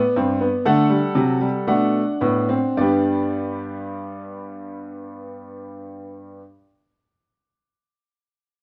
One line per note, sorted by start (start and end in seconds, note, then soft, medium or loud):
0.00 0.15 B3 medium
0.00 0.60 B4 medium
0.00 0.60 D5 medium
0.16 0.46 G2 medium
0.16 0.39 C4 medium
0.41 0.64 B3 medium
0.65 0.96 D3 medium
0.65 0.89 A3 medium
0.65 1.64 A4 medium
0.65 1.65 F#5 medium
0.89 1.14 G3 medium
1.15 1.47 C3 medium
1.15 1.40 F#3 medium
1.41 1.66 G3 medium
1.67 2.01 B2 medium
1.67 2.01 A3 medium
1.67 2.74 D4 medium
1.67 2.74 F#5 medium
2.21 2.56 A2 medium
2.21 2.48 B3 medium
2.49 2.76 C4 medium
2.77 6.39 G2 medium
2.77 6.42 G3 medium
2.77 6.39 B3 medium
2.77 6.39 D4 medium
2.77 6.42 G4 medium
2.77 6.39 D5 medium